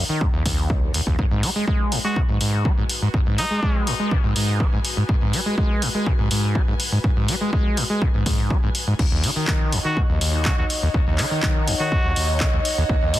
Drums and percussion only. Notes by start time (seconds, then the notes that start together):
0.21 kick
0.46 kick, open hi-hat
0.70 kick
0.94 open hi-hat
1.07 kick
1.19 kick
1.43 open hi-hat
1.68 kick
1.92 open hi-hat
2.16 kick
2.41 open hi-hat
2.65 kick
2.89 open hi-hat
3.14 kick
3.38 open hi-hat
3.63 kick
3.87 open hi-hat
4.11 kick
4.36 open hi-hat
4.60 kick
4.85 open hi-hat
5.09 kick
5.33 open hi-hat
5.58 kick
5.82 open hi-hat
6.06 kick
6.31 open hi-hat
6.55 kick
6.80 open hi-hat
7.04 kick
7.28 open hi-hat
7.53 kick
7.77 open hi-hat
8.02 kick
8.26 kick, open hi-hat
8.50 kick
8.75 open hi-hat
8.99 kick, crash
9.24 open hi-hat
9.47 kick, clap
9.72 open hi-hat
9.97 kick
10.21 open hi-hat
10.45 kick, clap
10.70 open hi-hat
10.94 kick
11.18 clap, open hi-hat
11.43 kick, clap
11.68 open hi-hat
11.92 kick
12.16 open hi-hat
12.40 kick, clap
12.65 open hi-hat
12.89 kick
13.14 open hi-hat